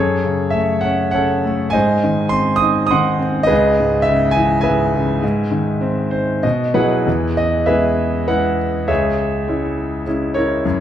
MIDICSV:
0, 0, Header, 1, 2, 480
1, 0, Start_track
1, 0, Tempo, 599401
1, 1398, Time_signature, 3, 2, 24, 8
1, 1872, Tempo, 580271
1, 4752, Tempo, 615385
1, 7152, Tempo, 583090
1, 8721, End_track
2, 0, Start_track
2, 0, Title_t, "Grand piano"
2, 0, Program_c, 0, 0
2, 0, Note_on_c, 0, 42, 57
2, 0, Note_on_c, 0, 68, 53
2, 0, Note_on_c, 0, 69, 53
2, 0, Note_on_c, 0, 73, 75
2, 111, Control_c, 0, 64, 127
2, 194, Note_on_c, 0, 49, 42
2, 404, Note_on_c, 0, 76, 75
2, 428, Note_on_c, 0, 57, 48
2, 441, Note_off_c, 0, 73, 0
2, 643, Note_off_c, 0, 68, 0
2, 644, Note_off_c, 0, 69, 0
2, 647, Note_on_c, 0, 78, 71
2, 670, Note_off_c, 0, 76, 0
2, 678, Note_on_c, 0, 61, 50
2, 879, Note_off_c, 0, 78, 0
2, 891, Note_on_c, 0, 78, 74
2, 896, Note_off_c, 0, 49, 0
2, 908, Note_on_c, 0, 49, 47
2, 916, Note_on_c, 0, 73, 53
2, 919, Note_on_c, 0, 69, 55
2, 1150, Note_off_c, 0, 57, 0
2, 1162, Note_on_c, 0, 57, 51
2, 1362, Note_on_c, 0, 80, 89
2, 1364, Note_off_c, 0, 42, 0
2, 1364, Note_off_c, 0, 73, 0
2, 1366, Note_off_c, 0, 69, 0
2, 1376, Note_off_c, 0, 61, 0
2, 1378, Note_off_c, 0, 49, 0
2, 1385, Note_on_c, 0, 75, 62
2, 1387, Note_on_c, 0, 72, 62
2, 1392, Note_off_c, 0, 57, 0
2, 1396, Note_on_c, 0, 44, 63
2, 1399, Note_off_c, 0, 78, 0
2, 1408, Control_c, 0, 64, 0
2, 1553, Control_c, 0, 64, 127
2, 1630, Note_on_c, 0, 51, 51
2, 1836, Note_on_c, 0, 84, 88
2, 1865, Note_on_c, 0, 60, 50
2, 1869, Note_off_c, 0, 80, 0
2, 2056, Note_on_c, 0, 87, 95
2, 2074, Note_off_c, 0, 75, 0
2, 2075, Note_off_c, 0, 72, 0
2, 2101, Note_on_c, 0, 63, 52
2, 2104, Note_off_c, 0, 84, 0
2, 2296, Note_off_c, 0, 87, 0
2, 2309, Note_on_c, 0, 87, 89
2, 2337, Note_off_c, 0, 51, 0
2, 2342, Note_on_c, 0, 84, 64
2, 2345, Note_on_c, 0, 78, 67
2, 2349, Note_on_c, 0, 51, 55
2, 2567, Note_off_c, 0, 60, 0
2, 2580, Note_on_c, 0, 60, 56
2, 2778, Note_on_c, 0, 75, 90
2, 2779, Note_off_c, 0, 87, 0
2, 2796, Note_off_c, 0, 84, 0
2, 2797, Note_off_c, 0, 78, 0
2, 2800, Note_off_c, 0, 44, 0
2, 2807, Note_off_c, 0, 63, 0
2, 2808, Note_on_c, 0, 68, 67
2, 2808, Note_on_c, 0, 71, 69
2, 2818, Note_off_c, 0, 51, 0
2, 2821, Note_off_c, 0, 60, 0
2, 2831, Note_on_c, 0, 37, 70
2, 2847, Control_c, 0, 64, 0
2, 3001, Control_c, 0, 64, 127
2, 3080, Note_on_c, 0, 44, 51
2, 3254, Note_off_c, 0, 75, 0
2, 3266, Note_on_c, 0, 76, 88
2, 3319, Note_on_c, 0, 49, 53
2, 3506, Note_off_c, 0, 68, 0
2, 3506, Note_off_c, 0, 71, 0
2, 3506, Note_on_c, 0, 80, 90
2, 3536, Note_off_c, 0, 76, 0
2, 3549, Note_on_c, 0, 52, 57
2, 3738, Note_off_c, 0, 80, 0
2, 3750, Note_on_c, 0, 80, 81
2, 3771, Note_on_c, 0, 71, 56
2, 3775, Note_on_c, 0, 76, 59
2, 3781, Note_off_c, 0, 44, 0
2, 3794, Note_on_c, 0, 44, 54
2, 4018, Note_off_c, 0, 49, 0
2, 4031, Note_on_c, 0, 49, 58
2, 4231, Note_off_c, 0, 37, 0
2, 4243, Note_off_c, 0, 52, 0
2, 4246, Note_off_c, 0, 44, 0
2, 4259, Note_on_c, 0, 44, 67
2, 4260, Note_off_c, 0, 49, 0
2, 4275, Control_c, 0, 64, 0
2, 4418, Control_c, 0, 64, 127
2, 4499, Note_on_c, 0, 51, 50
2, 4743, Note_on_c, 0, 60, 52
2, 4978, Note_on_c, 0, 72, 61
2, 5186, Note_off_c, 0, 80, 0
2, 5196, Note_off_c, 0, 71, 0
2, 5197, Note_off_c, 0, 76, 0
2, 5205, Note_off_c, 0, 44, 0
2, 5212, Note_off_c, 0, 51, 0
2, 5213, Note_off_c, 0, 72, 0
2, 5218, Note_off_c, 0, 60, 0
2, 5229, Note_on_c, 0, 75, 65
2, 5231, Note_on_c, 0, 47, 59
2, 5246, Control_c, 0, 64, 0
2, 5373, Control_c, 0, 64, 127
2, 5462, Note_off_c, 0, 75, 0
2, 5471, Note_on_c, 0, 71, 68
2, 5472, Note_on_c, 0, 54, 44
2, 5474, Note_on_c, 0, 78, 61
2, 5484, Note_on_c, 0, 68, 48
2, 5485, Note_on_c, 0, 64, 52
2, 5704, Note_off_c, 0, 78, 0
2, 5709, Note_off_c, 0, 47, 0
2, 5713, Note_off_c, 0, 54, 0
2, 5723, Note_on_c, 0, 40, 51
2, 5734, Control_c, 0, 64, 0
2, 5870, Control_c, 0, 64, 127
2, 5928, Note_off_c, 0, 71, 0
2, 5963, Note_on_c, 0, 75, 71
2, 6173, Note_off_c, 0, 68, 0
2, 6174, Note_off_c, 0, 64, 0
2, 6188, Note_on_c, 0, 76, 69
2, 6193, Note_on_c, 0, 71, 55
2, 6196, Note_on_c, 0, 68, 54
2, 6203, Note_on_c, 0, 56, 39
2, 6209, Note_on_c, 0, 64, 47
2, 6210, Note_off_c, 0, 75, 0
2, 6210, Note_on_c, 0, 59, 39
2, 6657, Note_off_c, 0, 71, 0
2, 6665, Note_off_c, 0, 59, 0
2, 6666, Note_off_c, 0, 56, 0
2, 6666, Note_off_c, 0, 64, 0
2, 6669, Note_on_c, 0, 71, 59
2, 6669, Note_on_c, 0, 78, 75
2, 6677, Note_on_c, 0, 59, 37
2, 6677, Note_on_c, 0, 64, 46
2, 6679, Note_on_c, 0, 56, 43
2, 6687, Note_off_c, 0, 76, 0
2, 6882, Note_off_c, 0, 68, 0
2, 7115, Note_off_c, 0, 71, 0
2, 7119, Note_off_c, 0, 40, 0
2, 7136, Note_off_c, 0, 59, 0
2, 7136, Note_off_c, 0, 64, 0
2, 7136, Note_on_c, 0, 68, 57
2, 7137, Note_off_c, 0, 56, 0
2, 7138, Note_on_c, 0, 76, 70
2, 7139, Note_on_c, 0, 73, 56
2, 7147, Note_on_c, 0, 37, 58
2, 7161, Note_off_c, 0, 78, 0
2, 7162, Control_c, 0, 64, 0
2, 7301, Control_c, 0, 64, 127
2, 7630, Note_on_c, 0, 56, 42
2, 7635, Note_on_c, 0, 61, 39
2, 7637, Note_on_c, 0, 64, 47
2, 8075, Note_off_c, 0, 68, 0
2, 8076, Note_off_c, 0, 73, 0
2, 8076, Note_off_c, 0, 76, 0
2, 8097, Note_off_c, 0, 56, 0
2, 8100, Note_off_c, 0, 61, 0
2, 8101, Note_off_c, 0, 64, 0
2, 8114, Note_on_c, 0, 61, 41
2, 8118, Note_on_c, 0, 56, 44
2, 8120, Note_on_c, 0, 64, 48
2, 8344, Note_on_c, 0, 73, 73
2, 8350, Note_off_c, 0, 64, 0
2, 8356, Note_on_c, 0, 70, 50
2, 8362, Note_on_c, 0, 64, 53
2, 8557, Note_off_c, 0, 37, 0
2, 8577, Note_off_c, 0, 61, 0
2, 8579, Note_off_c, 0, 56, 0
2, 8601, Note_on_c, 0, 42, 60
2, 8603, Control_c, 0, 64, 0
2, 8721, Note_off_c, 0, 42, 0
2, 8721, Note_off_c, 0, 64, 0
2, 8721, Note_off_c, 0, 70, 0
2, 8721, Note_off_c, 0, 73, 0
2, 8721, End_track
0, 0, End_of_file